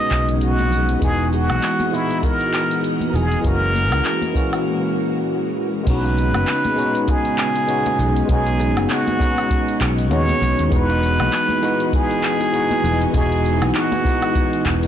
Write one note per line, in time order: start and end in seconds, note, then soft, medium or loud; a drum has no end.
0.00 0.98 C#3 medium
0.00 1.01 G#3 medium
0.00 5.83 G#3 medium
0.00 0.98 B3 medium
0.00 1.02 B3 medium
0.00 1.04 C#4 medium
0.00 0.98 D#4 medium
0.00 1.04 D#4 medium
0.00 1.04 F#4 loud
0.00 0.38 D#5 loud
0.11 0.95 B1 medium
0.11 kick medium
0.11 clap medium
0.11 shaker medium
0.29 closed hi-hat soft
0.29 shaker soft
0.41 0.99 F#4 loud
0.41 closed hi-hat medium
0.41 shaker soft
0.59 closed hi-hat soft
0.59 high conga medium
0.59 shaker soft
0.71 low conga medium
0.71 shaker medium
0.89 closed hi-hat soft
0.89 shaker soft
0.99 1.50 E1 loud
0.99 1.88 E3 medium
0.99 5.83 E3 medium
0.99 1.89 G#3 medium
0.99 1.90 B3 medium
0.99 3.42 F#4 medium
0.99 3.42 D#5 medium
0.99 kick loud
0.99 closed hi-hat medium
0.99 shaker soft
1.04 1.91 D#4 medium
1.04 1.92 F#4 loud
1.04 1.36 G#4 loud
1.20 shaker soft
1.33 1.96 F#4 medium
1.33 shaker medium
1.50 1.58 B1 medium
1.50 closed hi-hat soft
1.50 high conga medium
1.50 low woodblock medium
1.50 shaker soft
1.63 clap medium
1.63 closed hi-hat medium
1.63 shaker soft
1.80 closed hi-hat soft
1.80 high conga medium
1.80 shaker soft
1.91 2.08 E3 medium
1.91 2.09 G#3 medium
1.91 2.09 B3 medium
1.91 2.10 D#4 medium
1.91 2.26 E4 medium
1.91 2.10 F#4 medium
1.91 shaker medium
2.11 closed hi-hat soft
2.11 shaker soft
2.23 2.84 A#4 loud
2.23 kick loud
2.23 closed hi-hat medium
2.23 shaker soft
2.41 closed hi-hat soft
2.41 shaker soft
2.54 clap medium
2.54 shaker medium
2.71 closed hi-hat soft
2.71 shaker soft
2.84 closed hi-hat medium
2.84 shaker soft
3.01 closed hi-hat soft
3.01 high conga medium
3.01 shaker soft
3.10 3.17 A#4 medium
3.14 3.35 E1 loud
3.14 3.45 G#4 loud
3.14 low conga medium
3.14 shaker medium
3.32 closed hi-hat soft
3.32 shaker soft
3.41 3.92 F#1 medium
3.41 4.31 E3 loud
3.41 4.31 G#3 medium
3.41 5.84 A#3 medium
3.41 4.32 A#3 medium
3.41 5.84 F#4 medium
3.41 kick loud
3.41 closed hi-hat medium
3.45 4.33 C#4 medium
3.45 4.34 F#4 loud
3.45 4.62 A#4 loud
3.45 shaker soft
3.63 shaker soft
3.75 high conga medium
3.75 shaker medium
3.92 4.00 C#2 medium
3.92 closed hi-hat soft
3.92 high conga medium
3.92 low woodblock medium
3.92 shaker soft
4.05 clap medium
4.05 closed hi-hat medium
4.05 shaker soft
4.22 closed hi-hat soft
4.22 high conga medium
4.22 shaker soft
4.33 4.51 E3 medium
4.33 4.51 G#3 medium
4.33 4.51 A#3 medium
4.33 4.52 C#4 medium
4.33 4.52 F#4 loud
4.33 kick loud
4.33 shaker medium
4.53 closed hi-hat soft
4.53 low woodblock medium
4.53 shaker soft
5.83 6.35 B1 loud
5.83 6.73 G#3 medium
5.83 6.74 B3 medium
5.83 10.68 B3 medium
5.83 6.75 C#4 medium
5.83 14.87 D#4 medium
5.83 kick loud
5.83 closed hi-hat medium
5.83 crash loud
5.87 10.68 C#3 medium
5.87 14.87 G#3 medium
5.87 6.76 D#4 medium
5.87 6.76 F#4 loud
5.87 7.12 B4 loud
5.87 shaker soft
6.04 high bongo soft
6.04 shaker soft
6.18 shaker medium
6.34 6.43 F#1 medium
6.34 closed hi-hat soft
6.34 high bongo medium
6.34 high conga medium
6.34 low woodblock medium
6.34 shaker soft
6.47 clap medium
6.47 closed hi-hat medium
6.47 shaker soft
6.65 closed hi-hat soft
6.65 high conga medium
6.65 shaker soft
6.76 6.93 G#3 medium
6.76 6.94 B3 medium
6.76 6.94 C#4 medium
6.76 6.94 D#4 medium
6.76 6.95 F#4 loud
6.76 high bongo medium
6.76 shaker medium
6.95 closed hi-hat soft
6.95 shaker soft
7.08 8.30 G#4 loud
7.08 kick loud
7.08 closed hi-hat medium
7.08 high bongo medium
7.08 shaker soft
7.25 closed hi-hat soft
7.25 shaker soft
7.38 clap medium
7.38 shaker medium
7.56 closed hi-hat soft
7.56 high bongo soft
7.56 shaker soft
7.67 8.24 G#3 medium
7.67 8.26 B3 medium
7.67 8.26 C#4 medium
7.67 8.27 D#4 medium
7.67 8.27 F#4 medium
7.67 closed hi-hat medium
7.67 shaker soft
7.86 closed hi-hat soft
7.86 high bongo medium
7.86 high conga medium
7.86 shaker soft
7.99 8.20 B1 loud
7.99 low conga loud
7.99 shaker medium
8.16 closed hi-hat soft
8.16 shaker soft
8.26 8.77 B1 loud
8.26 9.15 G#3 loud
8.26 9.16 B3 medium
8.26 9.17 C#4 medium
8.26 kick loud
8.26 closed hi-hat medium
8.26 high bongo soft
8.30 9.18 D#4 medium
8.30 9.19 F#4 loud
8.30 8.93 G#4 medium
8.30 shaker soft
8.47 closed hi-hat soft
8.47 shaker soft
8.60 high bongo medium
8.60 shaker medium
8.77 8.85 F#1 medium
8.77 closed hi-hat soft
8.77 high conga medium
8.77 low woodblock medium
8.77 shaker soft
8.90 9.86 F#4 loud
8.90 clap medium
8.90 closed hi-hat medium
8.90 shaker soft
9.07 closed hi-hat soft
9.07 high bongo medium
9.07 high conga loud
9.07 shaker soft
9.19 9.36 G#3 medium
9.19 9.36 B3 medium
9.19 9.36 C#4 medium
9.19 9.37 D#4 medium
9.19 9.37 F#4 loud
9.19 kick loud
9.19 shaker medium
9.37 closed hi-hat soft
9.37 high bongo medium
9.37 low woodblock medium
9.37 shaker soft
9.50 kick loud
9.50 closed hi-hat medium
9.50 shaker soft
9.68 closed hi-hat soft
9.68 shaker soft
9.81 10.11 B1 medium
9.81 kick medium
9.81 clap medium
9.81 high bongo soft
9.81 shaker medium
9.98 closed hi-hat soft
9.98 shaker soft
10.09 10.32 D#2 loud
10.09 10.68 G#3 medium
10.09 10.68 B3 medium
10.09 10.69 C#4 medium
10.09 10.69 D#4 medium
10.09 10.70 F#4 medium
10.09 10.75 C#5 loud
10.09 closed hi-hat medium
10.09 high bongo medium
10.09 shaker soft
10.29 closed hi-hat soft
10.29 high conga medium
10.29 shaker soft
10.41 10.53 B1 loud
10.41 low conga medium
10.41 shaker medium
10.59 10.67 D#2 medium
10.59 closed hi-hat soft
10.59 high bongo medium
10.59 shaker soft
10.68 11.20 E1 loud
10.68 11.58 E3 medium
10.68 14.87 E3 medium
10.68 11.59 G#3 medium
10.68 11.60 B3 medium
10.68 14.87 F#4 medium
10.68 kick loud
10.68 closed hi-hat medium
10.73 11.61 D#4 medium
10.73 11.61 F#4 loud
10.73 11.97 B4 loud
10.73 shaker soft
10.90 high bongo medium
10.90 shaker soft
11.03 shaker medium
11.20 11.28 B1 medium
11.20 closed hi-hat soft
11.20 high conga medium
11.20 low woodblock medium
11.20 shaker soft
11.32 clap medium
11.32 closed hi-hat medium
11.32 high bongo soft
11.32 shaker soft
11.49 closed hi-hat soft
11.49 high conga loud
11.49 shaker soft
11.61 11.78 E3 medium
11.61 11.79 G#3 medium
11.61 11.79 B3 medium
11.61 11.79 D#4 medium
11.61 11.80 F#4 loud
11.61 high bongo medium
11.61 shaker medium
11.80 closed hi-hat soft
11.80 shaker soft
11.93 13.15 G#4 loud
11.93 kick loud
11.93 closed hi-hat soft
11.93 shaker soft
12.11 closed hi-hat soft
12.11 high bongo soft
12.11 shaker soft
12.23 clap medium
12.23 shaker medium
12.41 closed hi-hat soft
12.41 high bongo medium
12.41 shaker soft
12.52 13.10 E3 medium
12.52 13.11 G#3 medium
12.52 13.11 B3 medium
12.52 13.12 D#4 medium
12.52 13.12 F#4 medium
12.52 closed hi-hat medium
12.52 shaker soft
12.71 closed hi-hat soft
12.71 high conga medium
12.71 shaker soft
12.84 13.05 E1 loud
12.84 high bongo medium
12.84 low conga medium
12.84 shaker medium
13.02 closed hi-hat soft
13.02 shaker soft
13.11 13.62 E1 medium
13.11 14.01 E3 medium
13.11 14.01 G#3 medium
13.11 14.02 B3 medium
13.11 kick loud
13.11 closed hi-hat medium
13.11 high bongo medium
13.11 shaker soft
13.16 14.03 D#4 medium
13.16 14.04 F#4 loud
13.16 13.78 G#4 loud
13.32 closed hi-hat soft
13.32 shaker soft
13.45 shaker medium
13.62 13.70 B1 medium
13.62 closed hi-hat soft
13.62 high bongo soft
13.62 high conga medium
13.62 low woodblock medium
13.62 shaker soft
13.75 14.70 F#4 medium
13.75 clap medium
13.75 closed hi-hat medium
13.75 shaker soft
13.92 closed hi-hat soft
13.92 high bongo medium
13.92 high conga loud
13.92 shaker soft
14.04 14.20 E3 medium
14.04 14.21 G#3 medium
14.04 14.21 B3 medium
14.04 14.22 D#4 medium
14.04 14.22 F#4 loud
14.04 kick loud
14.04 shaker medium
14.22 closed hi-hat soft
14.22 low woodblock medium
14.22 shaker soft
14.35 kick loud
14.35 closed hi-hat soft
14.35 high bongo soft
14.35 shaker soft
14.53 closed hi-hat soft
14.53 shaker soft
14.65 14.87 E1 medium
14.65 kick medium
14.65 clap medium
14.65 high bongo medium
14.65 shaker medium
14.80 14.87 E3 medium
14.80 14.87 G#3 medium
14.80 14.87 B3 medium
14.80 closed hi-hat soft
14.84 shaker soft